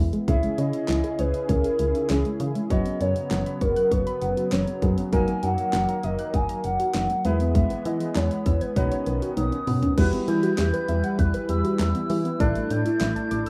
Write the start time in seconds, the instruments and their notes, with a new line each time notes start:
Already playing: fm bass E2, synth arpeggio sound E3, analog synth pad G#3 B3 E4
0.13 synth arpeggio sound G#3, closed hi-hat
0.28 fm bass C#2, analog synth pad C#3 C#4 E4 G#4, synth arpeggio sound E3, grand piano C#4 E4 G#4, soft synth lead E5, kick, closed hi-hat
0.43 synth arpeggio sound G#3, closed hi-hat
0.58 fm bass C#3, synth arpeggio sound C#4, soft synth lead D#5, closed hi-hat
0.73 closed hi-hat
0.88 fm bass C#2, synth arpeggio sound E4, snare, clap, closed hi-hat
1.04 synth arpeggio sound G#4, closed hi-hat
1.19 fm bass C#2, soft synth lead B4, synth arpeggio sound C#5, closed hi-hat
1.34 synth arpeggio sound D#5, closed hi-hat
1.49 fm bass C#2, soft synth lead A#4, synth arpeggio sound C#5, kick, closed hi-hat
1.64 synth arpeggio sound G#4, closed hi-hat
1.79 fm bass C#2, synth arpeggio sound E4, closed hi-hat
1.95 synth arpeggio sound D#4, closed hi-hat
2.10 fm bass C#2, synth arpeggio sound C#4, soft synth lead G#4, snare, clap, closed hi-hat
2.25 synth arpeggio sound G#3, closed hi-hat
2.40 fm bass C#3, synth arpeggio sound E3, closed hi-hat
2.55 synth arpeggio sound G#3, closed hi-hat
2.70 fm bass F#1, analog synth pad C#3 F#3 B3, synth arpeggio sound F#3, grand piano B3 C#4 F#4 C#5, soft synth lead D#5, kick, closed hi-hat
2.85 synth arpeggio sound B3, closed hi-hat
3.01 fm bass F#2, synth arpeggio sound C#4, soft synth lead C#5, closed hi-hat
3.16 closed hi-hat
3.31 fm bass F#1, synth arpeggio sound F#5, snare, clap, closed hi-hat
3.46 synth arpeggio sound B5, closed hi-hat
3.61 fm bass F#1, soft synth lead A#4, synth arpeggio sound C#6, kick, closed hi-hat
3.76 synth arpeggio sound F#6, closed hi-hat
3.92 fm bass F#1, soft synth lead B4, synth arpeggio sound C#6, kick, closed hi-hat
4.07 synth arpeggio sound B5, closed hi-hat
4.22 fm bass F#1, synth arpeggio sound F#5, closed hi-hat
4.37 synth arpeggio sound F#4, closed hi-hat
4.52 fm bass F#1, synth arpeggio sound C#4, soft synth lead C#5, snare, clap, closed hi-hat
4.67 synth arpeggio sound B3, closed hi-hat
4.82 fm bass F#2, synth arpeggio sound F#3, grand piano B3 C#4 F#4 G#4, kick, closed hi-hat
4.98 synth arpeggio sound B3, closed hi-hat
5.13 fm bass F#1, analog synth pad D#3 A#3, synth arpeggio sound F#3, grand piano A#3 D#4 F#4 A#4, soft synth lead G#5, kick, closed hi-hat
5.28 synth arpeggio sound A#3, closed hi-hat
5.43 fm bass F#2, synth arpeggio sound D#4, soft synth lead F#5, closed hi-hat
5.58 closed hi-hat
5.73 fm bass F#1, synth arpeggio sound F#5, snare, clap, closed hi-hat
5.89 synth arpeggio sound A#5, closed hi-hat
6.03 fm bass F#1, soft synth lead D#5, synth arpeggio sound D#6, closed hi-hat
6.19 synth arpeggio sound F#6, closed hi-hat
6.34 fm bass F#1, soft synth lead G#5, synth arpeggio sound D#6, kick, closed hi-hat
6.49 synth arpeggio sound A#5, closed hi-hat
6.64 fm bass F#1, soft synth lead F#5, synth arpeggio sound F#5, closed hi-hat
6.79 synth arpeggio sound F#4, closed hi-hat
6.94 fm bass F#1, synth arpeggio sound D#4, snare, clap, closed hi-hat
7.10 synth arpeggio sound A#3, closed hi-hat
7.25 fm bass E2, analog synth pad E3 G#3 B3, synth arpeggio sound G#3, grand piano B3 E4 G#4 B4, soft synth lead E5, closed hi-hat
7.40 synth arpeggio sound B3, closed hi-hat
7.55 synth arpeggio sound G#3, soft synth lead E5, kick, closed hi-hat
7.70 synth arpeggio sound B3, closed hi-hat
7.85 fm bass E3, synth arpeggio sound E4, soft synth lead D#5, closed hi-hat
8.00 closed hi-hat
8.15 fm bass E2, soft synth lead C#5, synth arpeggio sound G#5, snare, clap, closed hi-hat
8.31 synth arpeggio sound B5, closed hi-hat
8.46 fm bass E2, synth arpeggio sound E6, kick, closed hi-hat
8.61 soft synth lead B4, synth arpeggio sound G#6, closed hi-hat
8.76 fm bass B1, analog synth pad D#3 C#4, grand piano C#4 D#4 F#4 B4, soft synth lead C#5, synth arpeggio sound D#5, kick, closed hi-hat
8.92 synth arpeggio sound C#5, closed hi-hat
9.06 fm bass B1, synth arpeggio sound B4, closed hi-hat
9.22 synth arpeggio sound F#4, closed hi-hat
9.37 fm bass B1, synth arpeggio sound D#4, soft synth lead D#6, closed hi-hat, high tom
9.52 synth arpeggio sound C#4, closed hi-hat
9.67 fm bass B2, synth arpeggio sound B3, mid tom, open hi-hat
9.82 synth arpeggio sound C#4, closed hi-hat, floor tom
9.97 fm bass E2, analog synth pad E3 G3 E4 B4, synth arpeggio sound G3, grand piano B3 E4 F#4 G4 B4, soft synth lead F#6, kick, closed hi-hat, crash
10.13 synth arpeggio sound B3, closed hi-hat
10.28 fm bass E3, synth arpeggio sound E4, soft synth lead G6, closed hi-hat
10.43 synth arpeggio sound F#4, closed hi-hat
10.58 fm bass E2, synth arpeggio sound G4, snare, clap, closed hi-hat
10.73 synth arpeggio sound B4, closed hi-hat
10.88 fm bass E2, synth arpeggio sound E5, closed hi-hat
11.04 synth arpeggio sound F#5, closed hi-hat
11.19 fm bass E2, synth arpeggio sound E5, soft synth lead F#6, kick, closed hi-hat
11.34 synth arpeggio sound B4, closed hi-hat
11.49 fm bass E2, synth arpeggio sound G4, soft synth lead E6, closed hi-hat
11.64 synth arpeggio sound F#4, closed hi-hat
11.79 fm bass E2, synth arpeggio sound E4, soft synth lead E6, snare, clap, closed hi-hat
11.95 synth arpeggio sound B3, closed hi-hat
12.10 fm bass E3, synth arpeggio sound G3, open hi-hat
12.25 synth arpeggio sound B3, closed hi-hat
12.40 fm bass A1, synth arpeggio sound E3, grand piano A3 D4 E4 A4 D5, analog synth pad A3 D4, soft synth lead F#6, kick, closed hi-hat
12.55 synth arpeggio sound A3, closed hi-hat
12.70 fm bass A2, synth arpeggio sound D4, soft synth lead G6, closed hi-hat
12.86 synth arpeggio sound E4, closed hi-hat
13.01 fm bass A1, synth arpeggio sound E5, snare, clap, closed hi-hat
13.16 synth arpeggio sound A5, closed hi-hat
13.31 fm bass A1, synth arpeggio sound D6, closed hi-hat
13.46 synth arpeggio sound E6, closed hi-hat